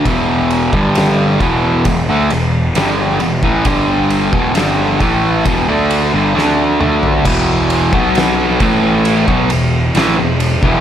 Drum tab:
CC |----------------|----------------|x---------------|
RD |x-x-x-x-x-x-x-x-|x-x-x-x-x-x-----|--x-x-x-x-x-x-x-|
SD |----o-------o---|----o-------o---|----o-------o---|
T2 |----------------|--------------o-|----------------|
FT |----------------|---------------o|----------------|
BD |o--o--o-o------o|o--o--o-o-------|o--o--o--o-----o|